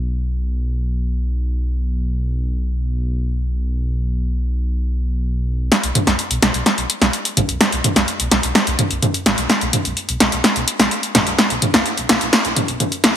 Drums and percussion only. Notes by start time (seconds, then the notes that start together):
5.72 snare, closed hi-hat
5.83 closed hi-hat
5.95 closed hi-hat, mid tom
6.07 snare, closed hi-hat
6.19 closed hi-hat
6.31 closed hi-hat
6.42 snare, closed hi-hat
6.54 closed hi-hat
6.66 snare, closed hi-hat
6.78 closed hi-hat
6.90 closed hi-hat
7.02 snare, closed hi-hat
7.13 closed hi-hat
7.25 closed hi-hat
7.37 closed hi-hat, mid tom
7.49 closed hi-hat
7.61 snare, closed hi-hat
7.72 closed hi-hat
7.84 closed hi-hat, mid tom
7.96 snare, closed hi-hat
8.08 closed hi-hat
8.20 closed hi-hat
8.31 snare, closed hi-hat
8.43 closed hi-hat
8.55 snare, closed hi-hat
8.67 closed hi-hat
8.79 closed hi-hat, mid tom
8.91 closed hi-hat
9.02 closed hi-hat, mid tom
9.14 closed hi-hat
9.26 snare, closed hi-hat
9.38 closed hi-hat
9.50 snare, closed hi-hat
9.61 closed hi-hat
9.73 closed hi-hat, mid tom
9.85 closed hi-hat
9.97 closed hi-hat
10.09 closed hi-hat
10.20 snare, closed hi-hat
10.32 closed hi-hat
10.44 snare, closed hi-hat
10.56 closed hi-hat
10.68 closed hi-hat
10.80 snare, closed hi-hat
10.91 closed hi-hat
11.03 closed hi-hat
11.15 snare, closed hi-hat, mid tom
11.27 closed hi-hat
11.38 snare, closed hi-hat
11.50 closed hi-hat
11.62 closed hi-hat, mid tom
11.74 snare, closed hi-hat
11.86 closed hi-hat
11.97 closed hi-hat
12.09 snare, closed hi-hat
12.21 closed hi-hat
12.33 snare, closed hi-hat
12.45 closed hi-hat
12.56 closed hi-hat, mid tom
12.68 closed hi-hat
12.80 closed hi-hat, mid tom
12.92 closed hi-hat
13.04 snare, closed hi-hat